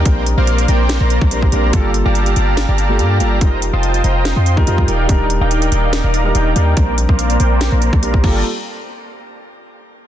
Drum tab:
CC |----------------|----------------|----------------|----------------|
HH |x-x-xxx-x-x-x-x-|x-x-xxx-x-x-x-x-|x-x-xxx-x-x-x-x-|x-x-xxx-x-x-x-x-|
SD |--------o-------|--------o-------|--------o-------|--------o-------|
BD |o----------o-o--|o---------------|o----------o-o--|o---------------|

CC |--------------x-|----------------|
HH |x-x-xxx-x-x-x---|----------------|
SD |--------o-------|----------------|
BD |o--o-------o-oo-|----------------|